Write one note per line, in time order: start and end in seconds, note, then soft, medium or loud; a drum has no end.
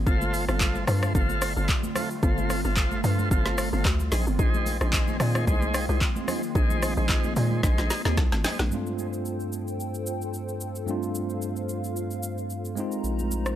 0.06 0.47 G1 loud
0.06 4.08 D3 medium
0.06 4.08 G3 medium
0.06 4.08 A3 medium
0.06 8.68 C4 medium
0.06 0.45 F4 loud
0.06 4.08 F4 loud
0.06 0.45 A4 medium
0.06 0.45 C5 loud
0.06 kick loud
0.06 shaker medium
0.22 high conga medium
0.22 shaker medium
0.34 open hi-hat medium
0.34 high conga medium
0.34 shaker medium
0.48 0.86 G1 medium
0.48 0.85 F4 medium
0.48 0.85 A4 medium
0.48 0.85 C5 medium
0.48 cross-stick medium
0.48 shaker medium
0.61 kick loud
0.61 clap loud
0.61 shaker medium
0.75 high conga medium
0.75 shaker soft
0.87 1.14 G2 loud
0.87 1.13 F4 medium
0.87 1.13 A4 medium
0.87 1.13 C5 medium
0.87 cross-stick loud
0.87 open hi-hat medium
0.87 low conga medium
0.87 shaker medium
1.03 cross-stick loud
1.03 high conga medium
1.03 shaker medium
1.15 1.55 G1 loud
1.15 1.53 F4 loud
1.15 1.53 A4 medium
1.15 1.53 C5 loud
1.15 kick loud
1.15 low conga medium
1.15 shaker loud
1.29 high conga medium
1.29 shaker medium
1.42 cross-stick loud
1.42 open hi-hat medium
1.42 shaker loud
1.56 1.68 G1 medium
1.56 1.68 F4 medium
1.56 1.68 A4 medium
1.56 1.68 C5 medium
1.56 shaker soft
1.69 kick loud
1.69 clap medium
1.69 shaker medium
1.83 high conga medium
1.83 shaker medium
1.95 2.09 F4 medium
1.95 2.09 A4 medium
1.95 2.10 C5 medium
1.95 cross-stick loud
1.95 open hi-hat medium
1.95 low conga medium
1.95 shaker loud
2.11 shaker medium
2.23 2.63 G1 loud
2.23 2.61 F4 loud
2.23 2.61 A4 medium
2.23 2.61 C5 loud
2.23 kick loud
2.23 shaker medium
2.38 high conga medium
2.38 shaker medium
2.50 cross-stick medium
2.50 open hi-hat medium
2.50 high conga medium
2.50 shaker loud
2.65 3.02 G1 medium
2.65 3.01 F4 medium
2.65 3.01 A4 medium
2.65 3.01 C5 medium
2.65 shaker medium
2.77 kick medium
2.77 clap loud
2.77 shaker medium
2.91 high conga medium
2.91 shaker soft
3.04 3.30 G2 loud
3.04 3.29 F4 medium
3.04 3.29 A4 medium
3.04 3.29 C5 medium
3.04 open hi-hat medium
3.04 low conga medium
3.04 shaker medium
3.19 high conga medium
3.19 shaker medium
3.31 3.71 G1 loud
3.31 3.69 F4 loud
3.31 3.69 A4 loud
3.31 3.70 C5 loud
3.31 kick loud
3.31 low conga medium
3.31 shaker medium
3.45 snare medium
3.45 high conga medium
3.45 shaker medium
3.58 cross-stick loud
3.58 open hi-hat medium
3.58 shaker loud
3.73 3.85 G1 loud
3.73 3.84 F4 medium
3.73 3.84 A4 medium
3.73 3.84 C5 medium
3.73 shaker medium
3.85 4.11 D2 loud
3.85 kick loud
3.85 clap loud
3.85 shaker medium
4.00 high conga medium
4.00 shaker medium
4.12 4.26 A#1 loud
4.12 8.68 D#3 medium
4.12 8.68 G#3 medium
4.12 8.68 A#3 medium
4.12 4.25 D#4 medium
4.12 8.68 F4 loud
4.12 4.26 G#4 medium
4.12 4.26 C5 medium
4.12 snare medium
4.12 open hi-hat medium
4.12 low conga medium
4.12 shaker medium
4.27 4.39 G1 loud
4.27 shaker medium
4.39 4.79 A#1 loud
4.39 4.77 D#4 loud
4.39 4.77 G#4 loud
4.39 4.78 C5 loud
4.39 kick loud
4.39 shaker medium
4.54 high conga medium
4.54 shaker medium
4.66 open hi-hat medium
4.66 high conga medium
4.66 shaker medium
4.81 5.19 A#1 loud
4.81 5.17 D#4 medium
4.81 5.17 G#4 medium
4.81 5.17 C5 medium
4.81 cross-stick medium
4.81 shaker medium
4.93 kick medium
4.93 clap loud
4.93 shaker medium
5.08 high conga medium
5.08 shaker soft
5.20 5.46 A#2 loud
5.20 5.45 D#4 medium
5.20 5.45 G#4 medium
5.20 5.45 C5 medium
5.20 cross-stick loud
5.20 open hi-hat medium
5.20 low conga medium
5.20 shaker medium
5.35 cross-stick loud
5.35 high conga medium
5.35 shaker medium
5.47 5.88 C2 loud
5.47 5.85 D#4 loud
5.47 5.86 G#4 medium
5.47 5.86 C5 loud
5.47 kick loud
5.47 low conga medium
5.47 shaker medium
5.62 high conga medium
5.62 shaker medium
5.74 cross-stick loud
5.74 open hi-hat medium
5.74 shaker loud
5.89 6.01 C2 loud
5.89 6.00 D#4 medium
5.89 6.00 G#4 medium
5.89 6.00 C5 medium
5.89 shaker medium
6.01 kick loud
6.01 clap medium
6.01 shaker medium
6.16 high conga medium
6.16 shaker medium
6.28 6.42 D#4 medium
6.28 6.42 G#4 medium
6.28 6.42 C5 medium
6.28 cross-stick medium
6.28 open hi-hat medium
6.28 low conga medium
6.28 shaker loud
6.43 shaker medium
6.55 6.96 A#1 loud
6.55 6.94 D#4 loud
6.55 6.94 G#4 medium
6.55 6.94 C5 loud
6.55 kick loud
6.55 shaker medium
6.70 high conga medium
6.70 shaker medium
6.82 cross-stick loud
6.82 open hi-hat medium
6.82 high conga medium
6.82 shaker medium
6.97 7.35 A#1 medium
6.97 7.33 D#4 medium
6.97 7.34 G#4 medium
6.97 7.34 C5 medium
6.97 shaker medium
7.09 kick loud
7.09 clap loud
7.09 shaker medium
7.24 high conga medium
7.24 shaker soft
7.36 7.62 A#2 loud
7.36 7.61 D#4 medium
7.36 7.62 G#4 medium
7.36 7.62 C5 medium
7.36 open hi-hat medium
7.36 low conga medium
7.36 shaker medium
7.51 high conga medium
7.63 7.78 A#1 loud
7.63 8.02 D#4 loud
7.63 8.02 G#4 medium
7.63 8.02 C5 loud
7.63 kick loud
7.63 snare medium
7.63 low conga medium
7.63 shaker medium
7.78 7.90 A#1 loud
7.78 snare medium
7.78 high conga medium
7.78 shaker medium
7.90 snare medium
7.90 open hi-hat medium
7.90 shaker loud
8.05 8.17 D#2 medium
8.05 8.16 D#4 medium
8.05 8.16 G#4 medium
8.05 8.17 C5 medium
8.05 snare medium
8.05 shaker soft
8.17 8.32 C2 loud
8.17 kick loud
8.17 snare loud
8.17 shaker medium
8.32 8.44 G#1 medium
8.32 snare medium
8.32 high conga medium
8.32 shaker medium
8.44 8.58 D#4 medium
8.44 8.58 G#4 medium
8.44 8.58 C5 medium
8.44 snare loud
8.44 open hi-hat medium
8.44 low conga medium
8.44 shaker medium
8.59 8.71 A#1 loud
8.59 snare loud
8.59 high conga medium
8.59 shaker medium
8.70 10.83 G2 medium
8.70 10.84 A3 medium
8.70 10.84 C4 medium
8.70 10.85 D4 medium
8.70 12.73 F4 medium
8.70 12.73 A4 medium
8.70 12.73 C5 medium
8.70 10.86 G5 medium
8.70 shaker medium
8.74 10.85 F4 medium
8.86 shaker soft
8.99 shaker medium
9.13 shaker medium
9.25 shaker medium
9.40 shaker soft
9.53 shaker medium
9.68 shaker medium
9.80 shaker medium
9.94 shaker medium
10.06 shaker loud
10.22 shaker soft
10.34 shaker medium
10.49 shaker medium
10.61 shaker medium
10.75 shaker medium
10.86 12.72 G2 medium
10.86 12.73 A3 medium
10.86 12.74 C4 medium
10.86 12.74 D4 medium
10.86 12.75 F5 medium
10.86 shaker medium
10.91 12.75 F4 medium
11.03 shaker medium
11.15 shaker medium
11.30 shaker soft
11.42 shaker medium
11.56 shaker soft
11.69 shaker medium
11.84 shaker medium
11.96 shaker medium
12.11 shaker medium
12.23 shaker loud
12.38 shaker soft
12.50 shaker medium
12.65 shaker medium
12.75 13.55 G#3 medium
12.75 13.55 C4 medium
12.75 13.55 D#4 medium
12.75 13.55 A#4 medium
12.75 13.55 C5 medium
12.75 13.55 A#5 medium
12.75 shaker medium
12.80 13.55 F4 medium
12.92 shaker medium
13.04 13.55 A#1 medium
13.04 shaker medium
13.19 high conga medium
13.19 shaker medium
13.31 high conga medium
13.31 shaker medium
13.46 cross-stick medium
13.46 shaker soft